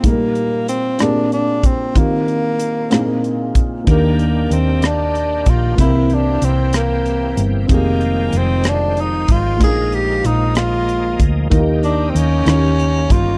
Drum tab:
HH |xxxxxx|xxxxxx|xxxxxx|xxxxxx|
SD |---r--|---r--|---r--|---r--|
BD |o----o|o----o|o----o|o-----|

HH |xxxxxx|xxxxxx|xxxxxx|
SD |---r--|---r--|---r--|
BD |o----o|o----o|o----o|